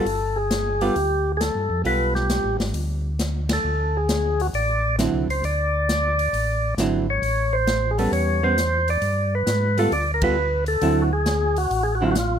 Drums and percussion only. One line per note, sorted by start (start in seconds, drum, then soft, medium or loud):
0.06 open hi-hat soft
0.51 snare medium
0.51 closed hi-hat soft
0.81 open hi-hat soft
0.96 open hi-hat soft
1.41 snare medium
1.41 closed hi-hat soft
1.85 open hi-hat soft
2.15 snare soft
2.30 snare medium
2.30 closed hi-hat medium
2.60 snare medium
2.60 open hi-hat soft
2.74 open hi-hat soft
3.19 snare medium
3.19 closed hi-hat soft
3.49 snare medium
3.49 ride medium
4.09 snare medium
4.09 closed hi-hat medium
4.40 open hi-hat soft
4.54 open hi-hat soft
4.99 snare medium
4.99 closed hi-hat soft
5.30 open hi-hat soft
5.44 open hi-hat soft
5.89 snare medium
5.89 closed hi-hat soft
6.19 open hi-hat soft
6.34 open hi-hat soft
6.78 snare medium
6.78 closed hi-hat soft
7.23 open hi-hat soft
7.67 snare medium
7.67 closed hi-hat soft
7.98 open hi-hat soft
8.13 open hi-hat soft
8.58 snare medium
8.58 closed hi-hat soft
8.88 open hi-hat soft
9.02 open hi-hat soft
9.47 snare medium
9.47 closed hi-hat medium
9.78 open hi-hat soft
9.92 open hi-hat soft
10.22 kick medium
10.22 ride medium
10.66 open hi-hat soft
10.81 open hi-hat soft
11.26 snare medium
11.26 closed hi-hat medium
11.56 open hi-hat soft
11.71 open hi-hat soft
12.15 snare medium
12.15 closed hi-hat soft